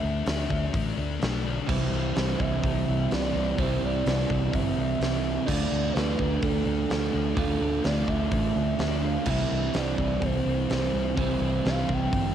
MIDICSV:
0, 0, Header, 1, 6, 480
1, 0, Start_track
1, 0, Key_signature, 0, "major"
1, 0, Tempo, 474308
1, 1711, Time_signature, 4, 2, 24, 8
1, 12495, End_track
2, 0, Start_track
2, 0, Title_t, "Soft synth lead"
2, 0, Program_c, 0, 80
2, 0, Note_on_c, 0, 76, 99
2, 1227, Note_off_c, 0, 76, 0
2, 1718, Note_on_c, 0, 72, 100
2, 2425, Note_on_c, 0, 76, 106
2, 2440, Note_off_c, 0, 72, 0
2, 3156, Note_on_c, 0, 74, 92
2, 3171, Note_off_c, 0, 76, 0
2, 3625, Note_on_c, 0, 72, 88
2, 3640, Note_off_c, 0, 74, 0
2, 3873, Note_on_c, 0, 74, 107
2, 3888, Note_off_c, 0, 72, 0
2, 4589, Note_on_c, 0, 76, 114
2, 4604, Note_off_c, 0, 74, 0
2, 5296, Note_off_c, 0, 76, 0
2, 5302, Note_on_c, 0, 76, 109
2, 5519, Note_on_c, 0, 74, 97
2, 5534, Note_off_c, 0, 76, 0
2, 6001, Note_on_c, 0, 71, 99
2, 6016, Note_off_c, 0, 74, 0
2, 6489, Note_on_c, 0, 69, 104
2, 6504, Note_off_c, 0, 71, 0
2, 6950, Note_off_c, 0, 69, 0
2, 6956, Note_on_c, 0, 69, 86
2, 7417, Note_off_c, 0, 69, 0
2, 7464, Note_on_c, 0, 69, 97
2, 7932, Note_on_c, 0, 74, 106
2, 7947, Note_off_c, 0, 69, 0
2, 8178, Note_on_c, 0, 76, 112
2, 8193, Note_off_c, 0, 74, 0
2, 9154, Note_on_c, 0, 77, 112
2, 9169, Note_off_c, 0, 76, 0
2, 9391, Note_off_c, 0, 77, 0
2, 9410, Note_on_c, 0, 76, 108
2, 9891, Note_on_c, 0, 74, 101
2, 9907, Note_off_c, 0, 76, 0
2, 10364, Note_on_c, 0, 72, 110
2, 10379, Note_off_c, 0, 74, 0
2, 10837, Note_off_c, 0, 72, 0
2, 10851, Note_on_c, 0, 72, 106
2, 11288, Note_off_c, 0, 72, 0
2, 11321, Note_on_c, 0, 72, 102
2, 11824, Note_on_c, 0, 77, 117
2, 11839, Note_off_c, 0, 72, 0
2, 12075, Note_on_c, 0, 79, 117
2, 12090, Note_off_c, 0, 77, 0
2, 12495, Note_off_c, 0, 79, 0
2, 12495, End_track
3, 0, Start_track
3, 0, Title_t, "Overdriven electric guitar"
3, 0, Program_c, 1, 29
3, 1699, Note_on_c, 1, 52, 100
3, 1718, Note_on_c, 1, 64, 111
3, 3634, Note_off_c, 1, 52, 0
3, 3639, Note_on_c, 1, 52, 99
3, 3655, Note_off_c, 1, 64, 0
3, 3659, Note_on_c, 1, 64, 120
3, 5522, Note_off_c, 1, 52, 0
3, 5550, Note_off_c, 1, 64, 0
3, 5554, Note_on_c, 1, 65, 103
3, 7456, Note_off_c, 1, 65, 0
3, 7473, Note_on_c, 1, 65, 114
3, 9376, Note_on_c, 1, 52, 104
3, 9377, Note_off_c, 1, 65, 0
3, 9397, Note_on_c, 1, 64, 112
3, 11307, Note_off_c, 1, 52, 0
3, 11311, Note_on_c, 1, 52, 107
3, 11326, Note_off_c, 1, 64, 0
3, 11330, Note_on_c, 1, 64, 104
3, 12495, Note_off_c, 1, 52, 0
3, 12495, Note_off_c, 1, 64, 0
3, 12495, End_track
4, 0, Start_track
4, 0, Title_t, "Distorted electric guitar"
4, 0, Program_c, 2, 30
4, 0, Note_on_c, 2, 50, 89
4, 20, Note_on_c, 2, 62, 85
4, 55, Note_on_c, 2, 57, 62
4, 236, Note_off_c, 2, 50, 0
4, 249, Note_on_c, 2, 50, 80
4, 254, Note_off_c, 2, 57, 0
4, 266, Note_on_c, 2, 57, 81
4, 267, Note_off_c, 2, 62, 0
4, 279, Note_on_c, 2, 62, 91
4, 479, Note_off_c, 2, 62, 0
4, 491, Note_on_c, 2, 62, 71
4, 519, Note_off_c, 2, 57, 0
4, 531, Note_on_c, 2, 57, 57
4, 717, Note_off_c, 2, 50, 0
4, 729, Note_on_c, 2, 50, 97
4, 741, Note_off_c, 2, 57, 0
4, 753, Note_on_c, 2, 57, 106
4, 755, Note_off_c, 2, 62, 0
4, 767, Note_on_c, 2, 62, 109
4, 968, Note_off_c, 2, 62, 0
4, 980, Note_on_c, 2, 62, 73
4, 1002, Note_off_c, 2, 57, 0
4, 1014, Note_on_c, 2, 57, 59
4, 1202, Note_off_c, 2, 50, 0
4, 1214, Note_on_c, 2, 50, 83
4, 1222, Note_off_c, 2, 57, 0
4, 1234, Note_on_c, 2, 57, 83
4, 1242, Note_off_c, 2, 62, 0
4, 1255, Note_on_c, 2, 62, 84
4, 1438, Note_off_c, 2, 62, 0
4, 1451, Note_on_c, 2, 62, 80
4, 1473, Note_off_c, 2, 57, 0
4, 1485, Note_on_c, 2, 57, 64
4, 1684, Note_off_c, 2, 50, 0
4, 1686, Note_off_c, 2, 62, 0
4, 1688, Note_on_c, 2, 48, 90
4, 1704, Note_off_c, 2, 57, 0
4, 1710, Note_on_c, 2, 55, 101
4, 1723, Note_on_c, 2, 60, 104
4, 1933, Note_off_c, 2, 60, 0
4, 1937, Note_on_c, 2, 60, 85
4, 1968, Note_off_c, 2, 55, 0
4, 1972, Note_on_c, 2, 55, 65
4, 2172, Note_off_c, 2, 48, 0
4, 2177, Note_on_c, 2, 48, 77
4, 2196, Note_off_c, 2, 55, 0
4, 2200, Note_on_c, 2, 55, 86
4, 2203, Note_off_c, 2, 60, 0
4, 2207, Note_on_c, 2, 60, 90
4, 2408, Note_off_c, 2, 60, 0
4, 2412, Note_on_c, 2, 60, 76
4, 2446, Note_off_c, 2, 55, 0
4, 2450, Note_on_c, 2, 55, 68
4, 2644, Note_off_c, 2, 48, 0
4, 2648, Note_on_c, 2, 48, 96
4, 2659, Note_off_c, 2, 55, 0
4, 2671, Note_on_c, 2, 55, 102
4, 2678, Note_off_c, 2, 60, 0
4, 2690, Note_on_c, 2, 60, 97
4, 2893, Note_off_c, 2, 60, 0
4, 2905, Note_on_c, 2, 60, 70
4, 2928, Note_off_c, 2, 55, 0
4, 2940, Note_on_c, 2, 55, 55
4, 3123, Note_off_c, 2, 48, 0
4, 3135, Note_on_c, 2, 48, 83
4, 3145, Note_off_c, 2, 55, 0
4, 3157, Note_on_c, 2, 55, 84
4, 3162, Note_off_c, 2, 60, 0
4, 3174, Note_on_c, 2, 60, 83
4, 3355, Note_off_c, 2, 60, 0
4, 3367, Note_on_c, 2, 60, 79
4, 3396, Note_off_c, 2, 55, 0
4, 3408, Note_on_c, 2, 55, 67
4, 3586, Note_off_c, 2, 48, 0
4, 3598, Note_on_c, 2, 48, 95
4, 3607, Note_off_c, 2, 55, 0
4, 3619, Note_on_c, 2, 55, 100
4, 3620, Note_off_c, 2, 60, 0
4, 3632, Note_on_c, 2, 60, 109
4, 3834, Note_off_c, 2, 60, 0
4, 3846, Note_on_c, 2, 60, 83
4, 3873, Note_off_c, 2, 55, 0
4, 3885, Note_on_c, 2, 55, 64
4, 4078, Note_off_c, 2, 48, 0
4, 4090, Note_on_c, 2, 48, 80
4, 4097, Note_off_c, 2, 55, 0
4, 4110, Note_on_c, 2, 55, 83
4, 4120, Note_off_c, 2, 60, 0
4, 4132, Note_on_c, 2, 60, 83
4, 4337, Note_off_c, 2, 60, 0
4, 4349, Note_on_c, 2, 60, 82
4, 4370, Note_off_c, 2, 55, 0
4, 4382, Note_on_c, 2, 55, 63
4, 4559, Note_off_c, 2, 48, 0
4, 4571, Note_on_c, 2, 48, 95
4, 4577, Note_off_c, 2, 55, 0
4, 4589, Note_on_c, 2, 55, 110
4, 4597, Note_off_c, 2, 60, 0
4, 4609, Note_on_c, 2, 60, 119
4, 4811, Note_off_c, 2, 60, 0
4, 4823, Note_on_c, 2, 60, 68
4, 4847, Note_off_c, 2, 55, 0
4, 4860, Note_on_c, 2, 55, 68
4, 5038, Note_off_c, 2, 48, 0
4, 5050, Note_on_c, 2, 48, 83
4, 5059, Note_off_c, 2, 55, 0
4, 5071, Note_on_c, 2, 55, 81
4, 5077, Note_off_c, 2, 60, 0
4, 5089, Note_on_c, 2, 60, 90
4, 5287, Note_off_c, 2, 60, 0
4, 5300, Note_on_c, 2, 60, 85
4, 5319, Note_off_c, 2, 55, 0
4, 5332, Note_on_c, 2, 55, 63
4, 5524, Note_off_c, 2, 48, 0
4, 5529, Note_off_c, 2, 60, 0
4, 5542, Note_on_c, 2, 50, 104
4, 5545, Note_off_c, 2, 55, 0
4, 5564, Note_on_c, 2, 57, 103
4, 5577, Note_on_c, 2, 62, 111
4, 5770, Note_off_c, 2, 62, 0
4, 5774, Note_on_c, 2, 62, 79
4, 5803, Note_off_c, 2, 57, 0
4, 5807, Note_on_c, 2, 57, 66
4, 6001, Note_off_c, 2, 50, 0
4, 6005, Note_on_c, 2, 50, 84
4, 6023, Note_off_c, 2, 57, 0
4, 6027, Note_on_c, 2, 57, 80
4, 6038, Note_off_c, 2, 62, 0
4, 6042, Note_on_c, 2, 62, 84
4, 6236, Note_off_c, 2, 62, 0
4, 6240, Note_on_c, 2, 62, 79
4, 6272, Note_off_c, 2, 57, 0
4, 6276, Note_on_c, 2, 57, 65
4, 6479, Note_off_c, 2, 50, 0
4, 6483, Note_on_c, 2, 50, 96
4, 6492, Note_off_c, 2, 57, 0
4, 6504, Note_on_c, 2, 57, 92
4, 6506, Note_off_c, 2, 62, 0
4, 6518, Note_on_c, 2, 62, 118
4, 6712, Note_off_c, 2, 62, 0
4, 6724, Note_on_c, 2, 62, 84
4, 6748, Note_off_c, 2, 57, 0
4, 6761, Note_on_c, 2, 57, 58
4, 6967, Note_off_c, 2, 50, 0
4, 6979, Note_on_c, 2, 50, 79
4, 6985, Note_off_c, 2, 57, 0
4, 6997, Note_on_c, 2, 57, 90
4, 6999, Note_off_c, 2, 62, 0
4, 7012, Note_on_c, 2, 62, 94
4, 7191, Note_off_c, 2, 62, 0
4, 7204, Note_on_c, 2, 62, 83
4, 7229, Note_off_c, 2, 57, 0
4, 7241, Note_on_c, 2, 57, 62
4, 7424, Note_off_c, 2, 50, 0
4, 7436, Note_on_c, 2, 50, 109
4, 7443, Note_off_c, 2, 57, 0
4, 7455, Note_on_c, 2, 57, 108
4, 7459, Note_off_c, 2, 62, 0
4, 7471, Note_on_c, 2, 62, 106
4, 7665, Note_off_c, 2, 62, 0
4, 7678, Note_on_c, 2, 62, 77
4, 7697, Note_off_c, 2, 57, 0
4, 7709, Note_on_c, 2, 57, 61
4, 7908, Note_off_c, 2, 50, 0
4, 7920, Note_on_c, 2, 50, 83
4, 7926, Note_off_c, 2, 57, 0
4, 7938, Note_off_c, 2, 62, 0
4, 7939, Note_on_c, 2, 57, 77
4, 7950, Note_on_c, 2, 62, 88
4, 8146, Note_off_c, 2, 62, 0
4, 8158, Note_on_c, 2, 62, 84
4, 8186, Note_off_c, 2, 57, 0
4, 8198, Note_on_c, 2, 57, 58
4, 8381, Note_off_c, 2, 50, 0
4, 8393, Note_on_c, 2, 50, 86
4, 8401, Note_off_c, 2, 57, 0
4, 8413, Note_off_c, 2, 62, 0
4, 8413, Note_on_c, 2, 57, 107
4, 8425, Note_on_c, 2, 62, 104
4, 8635, Note_off_c, 2, 62, 0
4, 8647, Note_on_c, 2, 62, 62
4, 8670, Note_off_c, 2, 57, 0
4, 8682, Note_on_c, 2, 57, 63
4, 8882, Note_off_c, 2, 50, 0
4, 8894, Note_on_c, 2, 50, 82
4, 8901, Note_off_c, 2, 57, 0
4, 8913, Note_on_c, 2, 57, 86
4, 8914, Note_off_c, 2, 62, 0
4, 8926, Note_on_c, 2, 62, 93
4, 9120, Note_off_c, 2, 62, 0
4, 9132, Note_on_c, 2, 62, 77
4, 9153, Note_off_c, 2, 57, 0
4, 9165, Note_on_c, 2, 57, 60
4, 9366, Note_off_c, 2, 62, 0
4, 9367, Note_off_c, 2, 50, 0
4, 9377, Note_on_c, 2, 48, 106
4, 9382, Note_off_c, 2, 57, 0
4, 9399, Note_on_c, 2, 55, 100
4, 9415, Note_on_c, 2, 60, 109
4, 9607, Note_off_c, 2, 60, 0
4, 9611, Note_on_c, 2, 60, 79
4, 9647, Note_off_c, 2, 55, 0
4, 9651, Note_on_c, 2, 55, 64
4, 9851, Note_off_c, 2, 48, 0
4, 9855, Note_on_c, 2, 48, 79
4, 9873, Note_off_c, 2, 55, 0
4, 9877, Note_on_c, 2, 55, 78
4, 9891, Note_off_c, 2, 60, 0
4, 9895, Note_on_c, 2, 60, 90
4, 10095, Note_off_c, 2, 60, 0
4, 10099, Note_on_c, 2, 60, 75
4, 10126, Note_off_c, 2, 55, 0
4, 10130, Note_on_c, 2, 55, 64
4, 10331, Note_off_c, 2, 48, 0
4, 10335, Note_on_c, 2, 48, 93
4, 10340, Note_off_c, 2, 55, 0
4, 10352, Note_on_c, 2, 55, 112
4, 10362, Note_off_c, 2, 60, 0
4, 10374, Note_on_c, 2, 60, 103
4, 10568, Note_off_c, 2, 60, 0
4, 10580, Note_on_c, 2, 60, 72
4, 10604, Note_off_c, 2, 55, 0
4, 10616, Note_on_c, 2, 55, 59
4, 10803, Note_off_c, 2, 48, 0
4, 10815, Note_on_c, 2, 48, 85
4, 10822, Note_off_c, 2, 55, 0
4, 10834, Note_on_c, 2, 55, 80
4, 10843, Note_off_c, 2, 60, 0
4, 10856, Note_on_c, 2, 60, 93
4, 11056, Note_off_c, 2, 60, 0
4, 11068, Note_on_c, 2, 60, 92
4, 11089, Note_off_c, 2, 55, 0
4, 11102, Note_on_c, 2, 55, 65
4, 11291, Note_off_c, 2, 48, 0
4, 11303, Note_on_c, 2, 48, 89
4, 11311, Note_off_c, 2, 55, 0
4, 11321, Note_off_c, 2, 60, 0
4, 11323, Note_on_c, 2, 55, 97
4, 11333, Note_on_c, 2, 60, 104
4, 11540, Note_off_c, 2, 60, 0
4, 11552, Note_on_c, 2, 60, 72
4, 11573, Note_off_c, 2, 55, 0
4, 11585, Note_on_c, 2, 55, 65
4, 11771, Note_off_c, 2, 48, 0
4, 11783, Note_on_c, 2, 48, 73
4, 11789, Note_off_c, 2, 55, 0
4, 11801, Note_on_c, 2, 55, 92
4, 11809, Note_off_c, 2, 60, 0
4, 11821, Note_on_c, 2, 60, 88
4, 12018, Note_off_c, 2, 60, 0
4, 12030, Note_on_c, 2, 60, 88
4, 12052, Note_off_c, 2, 55, 0
4, 12064, Note_on_c, 2, 55, 62
4, 12255, Note_off_c, 2, 48, 0
4, 12267, Note_on_c, 2, 48, 98
4, 12279, Note_off_c, 2, 55, 0
4, 12291, Note_off_c, 2, 60, 0
4, 12292, Note_on_c, 2, 55, 97
4, 12303, Note_on_c, 2, 60, 98
4, 12495, Note_off_c, 2, 48, 0
4, 12495, Note_off_c, 2, 55, 0
4, 12495, Note_off_c, 2, 60, 0
4, 12495, End_track
5, 0, Start_track
5, 0, Title_t, "Fingered electric bass"
5, 0, Program_c, 3, 33
5, 33, Note_on_c, 3, 38, 96
5, 220, Note_off_c, 3, 38, 0
5, 265, Note_on_c, 3, 38, 100
5, 454, Note_off_c, 3, 38, 0
5, 504, Note_on_c, 3, 38, 101
5, 693, Note_off_c, 3, 38, 0
5, 742, Note_on_c, 3, 33, 104
5, 932, Note_off_c, 3, 33, 0
5, 985, Note_on_c, 3, 38, 92
5, 1174, Note_off_c, 3, 38, 0
5, 1232, Note_on_c, 3, 35, 96
5, 1604, Note_off_c, 3, 35, 0
5, 1709, Note_on_c, 3, 36, 108
5, 1896, Note_off_c, 3, 36, 0
5, 1943, Note_on_c, 3, 36, 96
5, 2132, Note_off_c, 3, 36, 0
5, 2190, Note_on_c, 3, 36, 101
5, 2376, Note_off_c, 3, 36, 0
5, 2430, Note_on_c, 3, 36, 94
5, 2616, Note_off_c, 3, 36, 0
5, 2671, Note_on_c, 3, 36, 97
5, 2857, Note_off_c, 3, 36, 0
5, 2917, Note_on_c, 3, 36, 95
5, 3100, Note_off_c, 3, 36, 0
5, 3155, Note_on_c, 3, 36, 85
5, 3339, Note_off_c, 3, 36, 0
5, 3388, Note_on_c, 3, 36, 96
5, 3575, Note_off_c, 3, 36, 0
5, 3627, Note_on_c, 3, 36, 98
5, 3814, Note_off_c, 3, 36, 0
5, 3871, Note_on_c, 3, 36, 92
5, 4056, Note_off_c, 3, 36, 0
5, 4106, Note_on_c, 3, 36, 106
5, 4293, Note_off_c, 3, 36, 0
5, 4348, Note_on_c, 3, 36, 96
5, 4534, Note_off_c, 3, 36, 0
5, 4585, Note_on_c, 3, 31, 105
5, 4772, Note_off_c, 3, 31, 0
5, 4827, Note_on_c, 3, 36, 101
5, 5014, Note_off_c, 3, 36, 0
5, 5054, Note_on_c, 3, 36, 91
5, 5432, Note_off_c, 3, 36, 0
5, 5544, Note_on_c, 3, 38, 104
5, 5732, Note_off_c, 3, 38, 0
5, 5788, Note_on_c, 3, 38, 93
5, 5974, Note_off_c, 3, 38, 0
5, 6028, Note_on_c, 3, 38, 93
5, 6214, Note_off_c, 3, 38, 0
5, 6260, Note_on_c, 3, 38, 91
5, 6449, Note_off_c, 3, 38, 0
5, 6500, Note_on_c, 3, 38, 104
5, 6689, Note_off_c, 3, 38, 0
5, 6739, Note_on_c, 3, 38, 99
5, 6929, Note_off_c, 3, 38, 0
5, 6983, Note_on_c, 3, 38, 85
5, 7171, Note_off_c, 3, 38, 0
5, 7228, Note_on_c, 3, 38, 93
5, 7414, Note_off_c, 3, 38, 0
5, 7461, Note_on_c, 3, 38, 102
5, 7650, Note_off_c, 3, 38, 0
5, 7693, Note_on_c, 3, 38, 94
5, 7885, Note_off_c, 3, 38, 0
5, 7940, Note_on_c, 3, 38, 99
5, 8129, Note_off_c, 3, 38, 0
5, 8175, Note_on_c, 3, 38, 93
5, 8366, Note_off_c, 3, 38, 0
5, 8417, Note_on_c, 3, 33, 100
5, 8607, Note_off_c, 3, 33, 0
5, 8662, Note_on_c, 3, 38, 102
5, 8850, Note_off_c, 3, 38, 0
5, 8894, Note_on_c, 3, 38, 93
5, 9272, Note_off_c, 3, 38, 0
5, 9372, Note_on_c, 3, 36, 102
5, 9565, Note_off_c, 3, 36, 0
5, 9627, Note_on_c, 3, 36, 85
5, 9814, Note_off_c, 3, 36, 0
5, 9866, Note_on_c, 3, 36, 98
5, 10053, Note_off_c, 3, 36, 0
5, 10102, Note_on_c, 3, 36, 98
5, 10291, Note_off_c, 3, 36, 0
5, 10339, Note_on_c, 3, 36, 99
5, 10529, Note_off_c, 3, 36, 0
5, 10586, Note_on_c, 3, 36, 94
5, 10774, Note_off_c, 3, 36, 0
5, 10832, Note_on_c, 3, 36, 93
5, 11017, Note_off_c, 3, 36, 0
5, 11067, Note_on_c, 3, 36, 99
5, 11255, Note_off_c, 3, 36, 0
5, 11308, Note_on_c, 3, 36, 102
5, 11496, Note_off_c, 3, 36, 0
5, 11537, Note_on_c, 3, 36, 100
5, 11729, Note_off_c, 3, 36, 0
5, 11791, Note_on_c, 3, 36, 105
5, 11978, Note_off_c, 3, 36, 0
5, 12030, Note_on_c, 3, 36, 89
5, 12217, Note_off_c, 3, 36, 0
5, 12273, Note_on_c, 3, 31, 110
5, 12460, Note_off_c, 3, 31, 0
5, 12495, End_track
6, 0, Start_track
6, 0, Title_t, "Drums"
6, 266, Note_on_c, 9, 46, 64
6, 278, Note_on_c, 9, 38, 117
6, 367, Note_off_c, 9, 46, 0
6, 379, Note_off_c, 9, 38, 0
6, 509, Note_on_c, 9, 36, 90
6, 610, Note_off_c, 9, 36, 0
6, 747, Note_on_c, 9, 36, 119
6, 747, Note_on_c, 9, 46, 65
6, 848, Note_off_c, 9, 36, 0
6, 848, Note_off_c, 9, 46, 0
6, 1230, Note_on_c, 9, 46, 70
6, 1242, Note_on_c, 9, 38, 121
6, 1331, Note_off_c, 9, 46, 0
6, 1343, Note_off_c, 9, 38, 0
6, 1709, Note_on_c, 9, 36, 126
6, 1711, Note_on_c, 9, 49, 112
6, 1811, Note_off_c, 9, 36, 0
6, 1812, Note_off_c, 9, 49, 0
6, 2181, Note_on_c, 9, 46, 70
6, 2193, Note_on_c, 9, 38, 123
6, 2282, Note_off_c, 9, 46, 0
6, 2294, Note_off_c, 9, 38, 0
6, 2428, Note_on_c, 9, 36, 94
6, 2530, Note_off_c, 9, 36, 0
6, 2668, Note_on_c, 9, 36, 116
6, 2668, Note_on_c, 9, 46, 68
6, 2769, Note_off_c, 9, 36, 0
6, 2769, Note_off_c, 9, 46, 0
6, 3150, Note_on_c, 9, 46, 71
6, 3162, Note_on_c, 9, 38, 120
6, 3251, Note_off_c, 9, 46, 0
6, 3263, Note_off_c, 9, 38, 0
6, 3629, Note_on_c, 9, 36, 121
6, 3633, Note_on_c, 9, 46, 65
6, 3730, Note_off_c, 9, 36, 0
6, 3734, Note_off_c, 9, 46, 0
6, 4112, Note_on_c, 9, 46, 68
6, 4124, Note_on_c, 9, 38, 112
6, 4213, Note_off_c, 9, 46, 0
6, 4226, Note_off_c, 9, 38, 0
6, 4352, Note_on_c, 9, 36, 94
6, 4453, Note_off_c, 9, 36, 0
6, 4589, Note_on_c, 9, 36, 115
6, 4594, Note_on_c, 9, 46, 67
6, 4690, Note_off_c, 9, 36, 0
6, 4695, Note_off_c, 9, 46, 0
6, 5073, Note_on_c, 9, 46, 67
6, 5085, Note_on_c, 9, 38, 121
6, 5174, Note_off_c, 9, 46, 0
6, 5186, Note_off_c, 9, 38, 0
6, 5546, Note_on_c, 9, 36, 123
6, 5551, Note_on_c, 9, 57, 121
6, 5647, Note_off_c, 9, 36, 0
6, 5652, Note_off_c, 9, 57, 0
6, 6029, Note_on_c, 9, 46, 75
6, 6041, Note_on_c, 9, 38, 118
6, 6130, Note_off_c, 9, 46, 0
6, 6142, Note_off_c, 9, 38, 0
6, 6262, Note_on_c, 9, 36, 94
6, 6363, Note_off_c, 9, 36, 0
6, 6499, Note_on_c, 9, 46, 70
6, 6502, Note_on_c, 9, 36, 120
6, 6600, Note_off_c, 9, 46, 0
6, 6603, Note_off_c, 9, 36, 0
6, 6982, Note_on_c, 9, 46, 72
6, 6995, Note_on_c, 9, 38, 126
6, 7084, Note_off_c, 9, 46, 0
6, 7096, Note_off_c, 9, 38, 0
6, 7457, Note_on_c, 9, 36, 116
6, 7457, Note_on_c, 9, 46, 68
6, 7558, Note_off_c, 9, 46, 0
6, 7559, Note_off_c, 9, 36, 0
6, 7935, Note_on_c, 9, 46, 70
6, 7947, Note_on_c, 9, 38, 127
6, 8036, Note_off_c, 9, 46, 0
6, 8049, Note_off_c, 9, 38, 0
6, 8178, Note_on_c, 9, 36, 90
6, 8279, Note_off_c, 9, 36, 0
6, 8416, Note_on_c, 9, 46, 65
6, 8419, Note_on_c, 9, 36, 117
6, 8517, Note_off_c, 9, 46, 0
6, 8520, Note_off_c, 9, 36, 0
6, 8894, Note_on_c, 9, 46, 72
6, 8907, Note_on_c, 9, 38, 127
6, 8996, Note_off_c, 9, 46, 0
6, 9008, Note_off_c, 9, 38, 0
6, 9368, Note_on_c, 9, 57, 120
6, 9376, Note_on_c, 9, 36, 120
6, 9469, Note_off_c, 9, 57, 0
6, 9477, Note_off_c, 9, 36, 0
6, 9853, Note_on_c, 9, 46, 69
6, 9865, Note_on_c, 9, 38, 127
6, 9954, Note_off_c, 9, 46, 0
6, 9967, Note_off_c, 9, 38, 0
6, 10102, Note_on_c, 9, 36, 89
6, 10204, Note_off_c, 9, 36, 0
6, 10342, Note_on_c, 9, 36, 108
6, 10345, Note_on_c, 9, 46, 70
6, 10444, Note_off_c, 9, 36, 0
6, 10446, Note_off_c, 9, 46, 0
6, 10826, Note_on_c, 9, 46, 76
6, 10838, Note_on_c, 9, 38, 127
6, 10927, Note_off_c, 9, 46, 0
6, 10939, Note_off_c, 9, 38, 0
6, 11308, Note_on_c, 9, 36, 125
6, 11309, Note_on_c, 9, 46, 71
6, 11410, Note_off_c, 9, 36, 0
6, 11410, Note_off_c, 9, 46, 0
6, 11794, Note_on_c, 9, 46, 70
6, 11806, Note_on_c, 9, 38, 118
6, 11895, Note_off_c, 9, 46, 0
6, 11907, Note_off_c, 9, 38, 0
6, 12032, Note_on_c, 9, 36, 93
6, 12133, Note_off_c, 9, 36, 0
6, 12273, Note_on_c, 9, 36, 118
6, 12273, Note_on_c, 9, 46, 64
6, 12374, Note_off_c, 9, 36, 0
6, 12374, Note_off_c, 9, 46, 0
6, 12495, End_track
0, 0, End_of_file